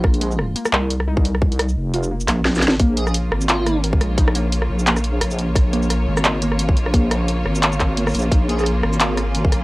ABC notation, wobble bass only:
X:1
M:4/4
L:1/8
Q:"Swing 16ths" 1/4=174
K:Bbm
V:1 name="Wobble bass" clef=bass
B,,,3 z C,,4- | C,,2 F,,,3 B,,,3 | B,,,3 A,,,4 B,,,- | B,,,3 B,,,3 B,,,2 |
B,,,3 A,,,4 B,,,- | B,,,3 A,,,4 B,,, | B,,,3 A,,,4 B,,, |]